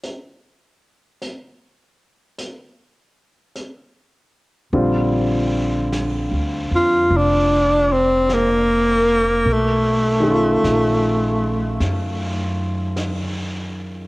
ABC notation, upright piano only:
X:1
M:4/4
L:1/8
Q:"Swing" 1/4=51
K:Bb
V:1 name="Upright piano"
z8 | [D,G,CF]8 | z [^D,^CF_A]6- [D,CFA] |]